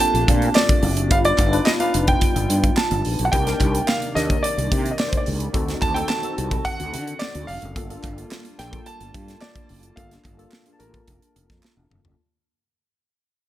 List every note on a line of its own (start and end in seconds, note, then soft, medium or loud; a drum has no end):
0.00 1.08 A3 medium
0.00 1.10 A#3 medium
0.00 1.13 C4 medium
0.00 1.09 D4 medium
0.00 1.10 D4 medium
0.00 1.11 F4 medium
0.00 1.13 G4 medium
0.00 1.13 A4 medium
0.00 0.57 A5 loud
0.00 closed hi-hat medium
0.14 0.24 A#1 medium
0.14 closed hi-hat medium
0.28 0.48 A#2 loud
0.28 kick medium
0.28 closed hi-hat medium
0.42 closed hi-hat soft
0.55 1.13 D5 medium
0.55 snare loud
0.55 clap medium
0.69 kick loud
0.69 closed hi-hat medium
0.83 1.11 F#1 medium
0.83 open hi-hat medium
0.97 closed hi-hat medium
1.10 1.31 G1 loud
1.10 3.30 G3 medium
1.10 3.31 B3 medium
1.10 1.42 D4 medium
1.10 1.42 D#4 medium
1.10 1.43 F4 medium
1.10 3.31 F4 medium
1.10 1.43 B4 medium
1.10 1.17 F5 loud
1.10 kick loud
1.10 closed hi-hat loud
1.25 1.68 D5 loud
1.25 closed hi-hat medium
1.38 1.58 G1 loud
1.38 kick medium
1.38 clap medium
1.38 closed hi-hat medium
1.52 1.73 D4 medium
1.52 1.74 D#4 medium
1.52 1.74 F4 medium
1.52 1.74 B4 medium
1.52 closed hi-hat medium
1.65 1.70 D#5 medium
1.65 snare loud
1.65 clap medium
1.79 2.64 D4 medium
1.79 2.64 D#4 medium
1.79 2.65 F4 medium
1.79 2.65 B4 medium
1.79 2.06 F5 medium
1.79 closed hi-hat medium
1.94 2.14 F1 medium
1.94 closed hi-hat medium
2.07 2.79 G5 loud
2.07 kick medium
2.07 closed hi-hat medium
2.21 kick medium
2.21 closed hi-hat medium
2.36 2.45 G1 medium
2.36 closed hi-hat medium
2.49 2.69 G2 loud
2.49 closed hi-hat medium
2.64 kick medium
2.64 closed hi-hat soft
2.77 3.27 A5 medium
2.77 snare loud
2.77 clap medium
2.91 3.01 G1 medium
2.91 closed hi-hat medium
3.05 3.15 A#1 medium
3.05 open hi-hat medium
3.19 3.29 B1 medium
3.19 closed hi-hat medium
3.25 3.32 F#5 medium
3.32 3.52 C2 loud
3.32 5.53 C3 medium
3.32 7.72 D#3 medium
3.32 5.53 A#3 medium
3.32 3.43 D4 medium
3.32 3.43 D#4 medium
3.32 3.43 G4 medium
3.32 3.43 A#4 medium
3.32 5.53 D5 medium
3.32 3.89 G5 loud
3.32 kick loud
3.32 closed hi-hat loud
3.46 3.99 D4 medium
3.46 3.99 D#4 medium
3.46 3.99 G4 medium
3.46 3.99 A#4 medium
3.46 snare soft
3.46 closed hi-hat medium
3.60 3.80 C2 loud
3.60 kick medium
3.60 clap medium
3.60 closed hi-hat medium
3.75 closed hi-hat medium
3.87 4.13 F5 medium
3.87 snare loud
3.87 clap medium
4.02 closed hi-hat soft
4.15 4.35 D#2 loud
4.15 5.00 D4 medium
4.15 5.00 D#4 medium
4.15 5.00 G4 medium
4.15 5.00 A#4 medium
4.15 4.44 D#5 medium
4.15 snare soft
4.15 closed hi-hat medium
4.30 kick loud
4.30 closed hi-hat medium
4.43 4.87 D5 medium
4.43 closed hi-hat medium
4.58 4.67 C2 loud
4.58 closed hi-hat soft
4.72 4.91 C3 loud
4.72 kick loud
4.72 closed hi-hat medium
4.86 closed hi-hat medium
4.91 5.00 D#5 medium
4.99 5.08 D5 medium
4.99 snare loud
4.99 clap medium
5.08 5.17 C5 medium
5.13 kick loud
5.13 closed hi-hat medium
5.17 5.27 D5 medium
5.26 5.47 C#2 medium
5.26 open hi-hat medium
5.40 closed hi-hat medium
5.53 5.74 D2 loud
5.53 7.74 D3 medium
5.53 5.85 C4 medium
5.53 7.74 C4 medium
5.53 5.85 D#4 medium
5.53 5.86 F#4 medium
5.53 7.74 F#4 medium
5.53 5.86 A4 medium
5.53 kick loud
5.53 closed hi-hat medium
5.68 snare soft
5.68 closed hi-hat medium
5.81 6.02 D2 loud
5.81 5.96 A5 loud
5.81 kick medium
5.81 clap medium
5.81 closed hi-hat medium
5.94 6.16 C4 medium
5.94 6.17 D#4 medium
5.94 6.17 F#4 medium
5.94 6.17 A4 medium
5.94 6.09 G5 loud
5.94 closed hi-hat medium
6.08 6.66 A5 loud
6.08 snare loud
6.08 clap loud
6.23 7.07 C4 medium
6.23 7.08 D#4 medium
6.23 7.08 F#4 medium
6.23 7.08 A4 medium
6.23 closed hi-hat soft
6.38 6.57 C2 loud
6.38 closed hi-hat medium
6.51 kick loud
6.51 closed hi-hat medium
6.65 7.16 F#5 loud
6.65 kick medium
6.65 closed hi-hat medium
6.80 6.94 D2 medium
6.80 closed hi-hat medium
6.93 7.12 D3 loud
6.93 closed hi-hat medium
7.07 closed hi-hat soft
7.19 7.48 D5 medium
7.19 snare loud
7.19 clap medium
7.35 7.44 D2 medium
7.35 closed hi-hat medium
7.47 7.58 F1 loud
7.47 8.62 F5 loud
7.47 open hi-hat medium
7.62 7.76 F#1 medium
7.62 closed hi-hat soft
7.75 7.95 G1 loud
7.75 12.15 G3 medium
7.75 7.86 A#3 medium
7.75 12.15 A#3 medium
7.75 7.86 D4 medium
7.75 7.86 F4 medium
7.75 12.15 F4 medium
7.75 7.86 A4 medium
7.75 12.15 A5 medium
7.75 kick loud
7.75 closed hi-hat medium
7.89 8.42 A#3 medium
7.89 8.42 D4 medium
7.89 8.42 F4 medium
7.89 8.43 A4 medium
7.89 closed hi-hat medium
8.03 8.23 G1 medium
8.03 kick medium
8.03 clap medium
8.03 closed hi-hat medium
8.18 closed hi-hat soft
8.31 snare loud
8.31 clap medium
8.45 closed hi-hat medium
8.58 8.79 A#1 loud
8.58 9.43 A#3 medium
8.58 9.43 D4 medium
8.58 9.43 F4 medium
8.58 9.43 A4 medium
8.58 8.85 G5 medium
8.58 snare soft
8.58 closed hi-hat medium
8.73 kick loud
8.73 closed hi-hat medium
8.86 9.43 A5 loud
8.86 closed hi-hat medium
9.00 9.10 G1 loud
9.00 closed hi-hat medium
9.14 9.34 G2 medium
9.14 kick medium
9.14 closed hi-hat medium
9.28 snare soft
9.28 closed hi-hat medium
9.41 9.99 D5 medium
9.41 snare loud
9.41 clap medium
9.56 kick loud
9.56 closed hi-hat medium
9.69 9.89 F#1 medium
9.69 open hi-hat medium
9.83 closed hi-hat medium
9.96 10.17 G1 loud
9.96 10.28 A#3 medium
9.96 10.29 D4 medium
9.96 10.29 F4 medium
9.96 10.29 A4 medium
9.96 10.76 F5 medium
9.96 kick loud
9.96 closed hi-hat loud
10.11 snare soft
10.11 closed hi-hat medium
10.24 10.44 G1 loud
10.24 kick medium
10.24 clap medium
10.24 closed hi-hat medium
10.37 10.59 A#3 medium
10.37 10.59 D4 medium
10.37 10.60 F4 medium
10.37 10.60 A4 medium
10.37 closed hi-hat medium
10.51 snare loud
10.51 clap medium
10.65 11.50 A#3 medium
10.65 11.50 D4 medium
10.65 11.50 F4 medium
10.65 10.73 G#4 medium
10.65 closed hi-hat medium
10.73 11.54 A5 medium
10.79 11.00 A1 loud
10.79 11.86 A#4 medium
10.79 closed hi-hat medium
10.94 kick medium
10.94 closed hi-hat medium
11.07 11.18 F1 loud
11.07 kick medium
11.07 closed hi-hat loud
11.22 closed hi-hat medium
11.36 11.46 F1 medium
11.36 closed hi-hat medium
11.50 11.59 F2 medium
11.50 kick medium
11.50 snare soft
11.50 closed hi-hat soft
11.63 snare medium
11.63 clap medium
11.77 11.87 E1 loud
11.90 12.00 F1 medium
11.90 mid tom medium
12.04 12.14 F#1 medium
12.04 floor tom medium